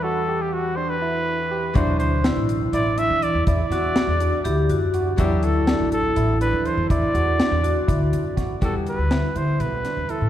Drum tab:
HH |-------|xxxxxxx|xxxxxxx|xxxxxxx|
SD |-------|--o----|-oo----|--o----|
BD |-------|o------|o------|o------|

HH |xxxxxxx|xxxxxxx|
SD |--o---o|--o--o-|
BD |o---o-o|o------|